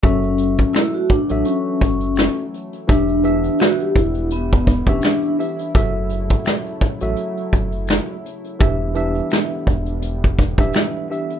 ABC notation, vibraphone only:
X:1
M:4/4
L:1/16
Q:"Swing 16ths" 1/4=84
K:F#phr
V:1 name="Vibraphone"
C4 E F D2 C2 C3 z3 | D4 F G E2 B,3 C D2 z2 | z16 | z16 |]